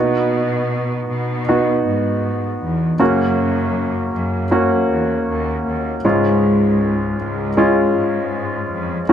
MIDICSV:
0, 0, Header, 1, 3, 480
1, 0, Start_track
1, 0, Tempo, 761421
1, 1894, Time_signature, 4, 2, 24, 8
1, 5755, End_track
2, 0, Start_track
2, 0, Title_t, "Grand piano"
2, 0, Program_c, 0, 0
2, 0, Note_on_c, 0, 59, 62
2, 0, Note_on_c, 0, 63, 52
2, 0, Note_on_c, 0, 66, 63
2, 76, Control_c, 0, 64, 127
2, 881, Note_off_c, 0, 59, 0
2, 882, Note_off_c, 0, 63, 0
2, 885, Note_off_c, 0, 66, 0
2, 936, Note_on_c, 0, 59, 57
2, 937, Note_on_c, 0, 63, 53
2, 938, Note_on_c, 0, 66, 65
2, 1847, Note_off_c, 0, 59, 0
2, 1848, Note_off_c, 0, 63, 0
2, 1848, Note_off_c, 0, 66, 0
2, 1888, Note_on_c, 0, 58, 67
2, 1889, Note_on_c, 0, 61, 58
2, 1892, Note_on_c, 0, 49, 52
2, 1893, Note_on_c, 0, 66, 72
2, 1902, Control_c, 0, 64, 0
2, 2013, Control_c, 0, 64, 127
2, 2586, Note_off_c, 0, 49, 0
2, 2802, Note_off_c, 0, 58, 0
2, 2802, Note_off_c, 0, 61, 0
2, 2804, Note_off_c, 0, 66, 0
2, 2845, Note_on_c, 0, 58, 61
2, 2848, Note_on_c, 0, 61, 61
2, 2850, Note_on_c, 0, 66, 75
2, 3759, Note_off_c, 0, 58, 0
2, 3760, Note_off_c, 0, 61, 0
2, 3761, Note_off_c, 0, 66, 0
2, 3811, Note_on_c, 0, 56, 66
2, 3813, Note_on_c, 0, 61, 64
2, 3816, Note_on_c, 0, 44, 62
2, 3817, Control_c, 0, 64, 0
2, 3818, Note_on_c, 0, 65, 71
2, 3920, Control_c, 0, 64, 127
2, 4505, Note_off_c, 0, 44, 0
2, 4720, Note_off_c, 0, 56, 0
2, 4721, Note_off_c, 0, 61, 0
2, 4724, Note_off_c, 0, 65, 0
2, 4773, Note_on_c, 0, 56, 68
2, 4774, Note_on_c, 0, 61, 61
2, 4780, Note_on_c, 0, 65, 75
2, 5683, Note_off_c, 0, 56, 0
2, 5684, Note_off_c, 0, 61, 0
2, 5686, Note_off_c, 0, 65, 0
2, 5731, Note_on_c, 0, 58, 60
2, 5732, Note_on_c, 0, 49, 60
2, 5733, Note_on_c, 0, 61, 62
2, 5734, Note_on_c, 0, 66, 75
2, 5738, Control_c, 0, 64, 0
2, 5755, Note_off_c, 0, 49, 0
2, 5755, Note_off_c, 0, 58, 0
2, 5755, Note_off_c, 0, 61, 0
2, 5755, Note_off_c, 0, 66, 0
2, 5755, End_track
3, 0, Start_track
3, 0, Title_t, "Cello section"
3, 0, Program_c, 1, 48
3, 0, Note_on_c, 1, 47, 79
3, 667, Note_off_c, 1, 47, 0
3, 689, Note_on_c, 1, 47, 74
3, 1148, Note_off_c, 1, 47, 0
3, 1173, Note_on_c, 1, 44, 60
3, 1628, Note_off_c, 1, 44, 0
3, 1650, Note_on_c, 1, 40, 71
3, 1875, Note_off_c, 1, 40, 0
3, 1887, Note_on_c, 1, 42, 94
3, 2584, Note_off_c, 1, 42, 0
3, 2606, Note_on_c, 1, 42, 73
3, 3064, Note_off_c, 1, 42, 0
3, 3086, Note_on_c, 1, 40, 62
3, 3312, Note_off_c, 1, 40, 0
3, 3331, Note_on_c, 1, 39, 72
3, 3554, Note_off_c, 1, 39, 0
3, 3571, Note_on_c, 1, 39, 60
3, 3793, Note_off_c, 1, 39, 0
3, 3808, Note_on_c, 1, 37, 85
3, 4501, Note_off_c, 1, 37, 0
3, 4530, Note_on_c, 1, 37, 73
3, 4984, Note_off_c, 1, 37, 0
3, 5015, Note_on_c, 1, 44, 69
3, 5466, Note_off_c, 1, 44, 0
3, 5493, Note_on_c, 1, 41, 73
3, 5715, Note_off_c, 1, 41, 0
3, 5755, End_track
0, 0, End_of_file